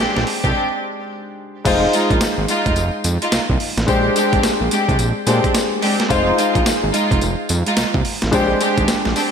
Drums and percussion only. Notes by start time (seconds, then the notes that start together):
0.17 snare
0.27 open hi-hat
0.44 kick, closed hi-hat
1.65 kick, closed hi-hat, crash, tambourine
1.93 closed hi-hat, tambourine
2.10 kick, closed hi-hat
2.21 snare, closed hi-hat, tambourine
2.48 closed hi-hat, tambourine
2.66 kick, closed hi-hat
2.76 closed hi-hat, tambourine
3.04 closed hi-hat, tambourine
3.22 closed hi-hat
3.32 snare, closed hi-hat, tambourine
3.50 kick
3.60 open hi-hat
3.77 snare, closed hi-hat
3.88 kick, closed hi-hat, tambourine
4.16 closed hi-hat, tambourine
4.33 kick, closed hi-hat
4.43 snare, closed hi-hat, tambourine
4.71 closed hi-hat, tambourine
4.89 kick, closed hi-hat
4.99 closed hi-hat, tambourine
5.27 closed hi-hat, tambourine
5.44 kick, closed hi-hat
5.54 snare, closed hi-hat, tambourine
5.82 open hi-hat
6.00 snare, closed hi-hat
6.10 kick, closed hi-hat, tambourine
6.38 closed hi-hat, tambourine
6.55 kick, closed hi-hat
6.66 snare, closed hi-hat, tambourine
6.94 closed hi-hat, tambourine
7.11 kick, closed hi-hat
7.21 closed hi-hat, tambourine
7.49 closed hi-hat, tambourine
7.66 closed hi-hat
7.77 snare, closed hi-hat, tambourine
7.94 kick
8.05 open hi-hat
8.22 snare, closed hi-hat
8.33 kick, closed hi-hat, tambourine
8.61 closed hi-hat, tambourine
8.78 kick, closed hi-hat
8.88 snare, closed hi-hat, tambourine
9.05 snare
9.16 open hi-hat, tambourine